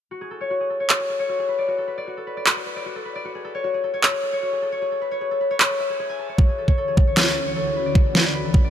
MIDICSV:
0, 0, Header, 1, 4, 480
1, 0, Start_track
1, 0, Tempo, 392157
1, 136, Time_signature, 4, 2, 24, 8
1, 10649, End_track
2, 0, Start_track
2, 0, Title_t, "Harp"
2, 0, Program_c, 0, 46
2, 135, Note_on_c, 0, 66, 74
2, 258, Note_on_c, 0, 68, 66
2, 377, Note_on_c, 0, 69, 69
2, 450, Note_off_c, 0, 68, 0
2, 498, Note_on_c, 0, 73, 92
2, 611, Note_off_c, 0, 66, 0
2, 616, Note_on_c, 0, 66, 70
2, 740, Note_on_c, 0, 68, 69
2, 813, Note_off_c, 0, 69, 0
2, 858, Note_on_c, 0, 69, 68
2, 931, Note_off_c, 0, 68, 0
2, 975, Note_off_c, 0, 73, 0
2, 980, Note_on_c, 0, 73, 88
2, 1094, Note_off_c, 0, 66, 0
2, 1098, Note_on_c, 0, 66, 73
2, 1222, Note_on_c, 0, 68, 68
2, 1296, Note_off_c, 0, 69, 0
2, 1339, Note_on_c, 0, 69, 66
2, 1412, Note_off_c, 0, 68, 0
2, 1455, Note_off_c, 0, 73, 0
2, 1460, Note_on_c, 0, 73, 89
2, 1574, Note_off_c, 0, 66, 0
2, 1579, Note_on_c, 0, 66, 75
2, 1700, Note_on_c, 0, 68, 68
2, 1774, Note_off_c, 0, 69, 0
2, 1818, Note_on_c, 0, 71, 69
2, 1940, Note_on_c, 0, 74, 90
2, 2013, Note_off_c, 0, 73, 0
2, 2051, Note_off_c, 0, 66, 0
2, 2056, Note_on_c, 0, 66, 75
2, 2180, Note_on_c, 0, 69, 66
2, 2253, Note_off_c, 0, 68, 0
2, 2291, Note_off_c, 0, 71, 0
2, 2296, Note_on_c, 0, 71, 70
2, 2414, Note_off_c, 0, 74, 0
2, 2419, Note_on_c, 0, 74, 94
2, 2532, Note_off_c, 0, 66, 0
2, 2537, Note_on_c, 0, 66, 72
2, 2654, Note_off_c, 0, 69, 0
2, 2659, Note_on_c, 0, 69, 70
2, 2772, Note_off_c, 0, 71, 0
2, 2777, Note_on_c, 0, 71, 69
2, 2895, Note_off_c, 0, 74, 0
2, 2900, Note_on_c, 0, 74, 90
2, 3012, Note_off_c, 0, 66, 0
2, 3017, Note_on_c, 0, 66, 75
2, 3134, Note_off_c, 0, 69, 0
2, 3139, Note_on_c, 0, 69, 69
2, 3251, Note_off_c, 0, 71, 0
2, 3256, Note_on_c, 0, 71, 67
2, 3374, Note_off_c, 0, 74, 0
2, 3379, Note_on_c, 0, 74, 92
2, 3491, Note_off_c, 0, 66, 0
2, 3496, Note_on_c, 0, 66, 76
2, 3613, Note_off_c, 0, 69, 0
2, 3618, Note_on_c, 0, 69, 69
2, 3731, Note_off_c, 0, 71, 0
2, 3736, Note_on_c, 0, 71, 70
2, 3855, Note_off_c, 0, 74, 0
2, 3860, Note_on_c, 0, 74, 90
2, 3971, Note_off_c, 0, 66, 0
2, 3976, Note_on_c, 0, 66, 78
2, 4099, Note_on_c, 0, 68, 68
2, 4172, Note_off_c, 0, 69, 0
2, 4216, Note_on_c, 0, 69, 71
2, 4290, Note_off_c, 0, 68, 0
2, 4340, Note_on_c, 0, 73, 93
2, 4413, Note_off_c, 0, 74, 0
2, 4450, Note_off_c, 0, 66, 0
2, 4455, Note_on_c, 0, 66, 74
2, 4577, Note_on_c, 0, 68, 71
2, 4650, Note_off_c, 0, 69, 0
2, 4695, Note_on_c, 0, 69, 70
2, 4769, Note_off_c, 0, 68, 0
2, 4813, Note_off_c, 0, 73, 0
2, 4818, Note_on_c, 0, 73, 91
2, 4930, Note_off_c, 0, 66, 0
2, 4935, Note_on_c, 0, 66, 74
2, 5059, Note_on_c, 0, 68, 68
2, 5132, Note_off_c, 0, 69, 0
2, 5176, Note_on_c, 0, 69, 67
2, 5250, Note_off_c, 0, 68, 0
2, 5293, Note_off_c, 0, 73, 0
2, 5298, Note_on_c, 0, 73, 91
2, 5411, Note_off_c, 0, 66, 0
2, 5416, Note_on_c, 0, 66, 75
2, 5537, Note_on_c, 0, 68, 69
2, 5611, Note_off_c, 0, 69, 0
2, 5656, Note_on_c, 0, 69, 72
2, 5729, Note_off_c, 0, 68, 0
2, 5774, Note_off_c, 0, 73, 0
2, 5779, Note_on_c, 0, 73, 93
2, 5897, Note_on_c, 0, 68, 75
2, 5970, Note_off_c, 0, 69, 0
2, 6019, Note_on_c, 0, 69, 66
2, 6092, Note_off_c, 0, 68, 0
2, 6132, Note_off_c, 0, 71, 0
2, 6137, Note_on_c, 0, 71, 71
2, 6254, Note_off_c, 0, 73, 0
2, 6259, Note_on_c, 0, 73, 94
2, 6378, Note_on_c, 0, 68, 72
2, 6451, Note_off_c, 0, 69, 0
2, 6500, Note_on_c, 0, 69, 69
2, 6574, Note_off_c, 0, 68, 0
2, 6613, Note_off_c, 0, 71, 0
2, 6617, Note_on_c, 0, 71, 68
2, 6735, Note_off_c, 0, 73, 0
2, 6739, Note_on_c, 0, 73, 93
2, 6858, Note_on_c, 0, 68, 74
2, 6932, Note_off_c, 0, 69, 0
2, 6980, Note_on_c, 0, 69, 66
2, 7054, Note_off_c, 0, 68, 0
2, 7097, Note_on_c, 0, 76, 90
2, 7219, Note_on_c, 0, 68, 67
2, 7292, Note_off_c, 0, 69, 0
2, 7331, Note_off_c, 0, 68, 0
2, 7336, Note_on_c, 0, 68, 90
2, 7458, Note_on_c, 0, 80, 92
2, 7576, Note_on_c, 0, 81, 68
2, 7649, Note_off_c, 0, 68, 0
2, 7649, Note_off_c, 0, 80, 0
2, 7693, Note_off_c, 0, 73, 0
2, 7698, Note_on_c, 0, 73, 67
2, 7810, Note_off_c, 0, 66, 0
2, 7815, Note_on_c, 0, 66, 74
2, 7938, Note_on_c, 0, 68, 68
2, 8011, Note_off_c, 0, 81, 0
2, 8056, Note_on_c, 0, 69, 71
2, 8130, Note_off_c, 0, 68, 0
2, 8174, Note_off_c, 0, 73, 0
2, 8178, Note_on_c, 0, 73, 92
2, 8292, Note_off_c, 0, 69, 0
2, 8297, Note_on_c, 0, 69, 89
2, 8418, Note_on_c, 0, 68, 70
2, 8492, Note_off_c, 0, 69, 0
2, 8536, Note_on_c, 0, 69, 67
2, 8609, Note_off_c, 0, 68, 0
2, 8653, Note_off_c, 0, 73, 0
2, 8658, Note_on_c, 0, 73, 91
2, 8771, Note_off_c, 0, 66, 0
2, 8776, Note_on_c, 0, 66, 74
2, 8898, Note_on_c, 0, 68, 71
2, 8972, Note_off_c, 0, 69, 0
2, 9015, Note_on_c, 0, 69, 68
2, 9088, Note_off_c, 0, 68, 0
2, 9126, Note_off_c, 0, 71, 0
2, 9134, Note_off_c, 0, 73, 0
2, 9139, Note_on_c, 0, 73, 90
2, 9205, Note_off_c, 0, 76, 0
2, 9251, Note_off_c, 0, 69, 0
2, 9256, Note_on_c, 0, 69, 94
2, 9379, Note_on_c, 0, 68, 71
2, 9452, Note_off_c, 0, 69, 0
2, 9495, Note_on_c, 0, 71, 70
2, 9618, Note_on_c, 0, 74, 91
2, 9692, Note_off_c, 0, 73, 0
2, 9730, Note_off_c, 0, 66, 0
2, 9735, Note_on_c, 0, 66, 77
2, 9858, Note_on_c, 0, 69, 67
2, 9931, Note_off_c, 0, 68, 0
2, 9970, Note_off_c, 0, 71, 0
2, 9975, Note_on_c, 0, 71, 71
2, 10094, Note_off_c, 0, 74, 0
2, 10099, Note_on_c, 0, 74, 97
2, 10210, Note_off_c, 0, 71, 0
2, 10215, Note_on_c, 0, 71, 91
2, 10333, Note_off_c, 0, 69, 0
2, 10338, Note_on_c, 0, 69, 73
2, 10450, Note_off_c, 0, 71, 0
2, 10573, Note_off_c, 0, 74, 0
2, 10578, Note_on_c, 0, 74, 91
2, 10649, Note_off_c, 0, 66, 0
2, 10649, Note_off_c, 0, 69, 0
2, 10649, Note_off_c, 0, 74, 0
2, 10649, End_track
3, 0, Start_track
3, 0, Title_t, "Ambient pad"
3, 0, Program_c, 1, 92
3, 7814, Note_on_c, 1, 38, 77
3, 7815, Note_on_c, 1, 50, 69
3, 7815, Note_on_c, 1, 61, 70
3, 7816, Note_on_c, 1, 52, 69
3, 7816, Note_on_c, 1, 66, 84
3, 9478, Note_off_c, 1, 38, 0
3, 9478, Note_off_c, 1, 50, 0
3, 9478, Note_off_c, 1, 61, 0
3, 9479, Note_off_c, 1, 52, 0
3, 9494, Note_on_c, 1, 40, 76
3, 9494, Note_on_c, 1, 57, 68
3, 9495, Note_on_c, 1, 52, 70
3, 9495, Note_on_c, 1, 62, 70
3, 10649, Note_off_c, 1, 40, 0
3, 10649, Note_off_c, 1, 52, 0
3, 10649, Note_off_c, 1, 57, 0
3, 10649, Note_off_c, 1, 62, 0
3, 10649, Note_off_c, 1, 66, 0
3, 10649, End_track
4, 0, Start_track
4, 0, Title_t, "Drums"
4, 1095, Note_on_c, 9, 39, 86
4, 1217, Note_off_c, 9, 39, 0
4, 3014, Note_on_c, 9, 39, 86
4, 3136, Note_off_c, 9, 39, 0
4, 4935, Note_on_c, 9, 39, 87
4, 5057, Note_off_c, 9, 39, 0
4, 6854, Note_on_c, 9, 39, 83
4, 6976, Note_off_c, 9, 39, 0
4, 7814, Note_on_c, 9, 36, 109
4, 7937, Note_off_c, 9, 36, 0
4, 8177, Note_on_c, 9, 36, 58
4, 8299, Note_off_c, 9, 36, 0
4, 8535, Note_on_c, 9, 36, 94
4, 8657, Note_off_c, 9, 36, 0
4, 8774, Note_on_c, 9, 38, 106
4, 8774, Note_on_c, 9, 39, 83
4, 8896, Note_off_c, 9, 38, 0
4, 8896, Note_off_c, 9, 39, 0
4, 9735, Note_on_c, 9, 36, 106
4, 9857, Note_off_c, 9, 36, 0
4, 9975, Note_on_c, 9, 38, 54
4, 10098, Note_off_c, 9, 38, 0
4, 10454, Note_on_c, 9, 36, 95
4, 10577, Note_off_c, 9, 36, 0
4, 10649, End_track
0, 0, End_of_file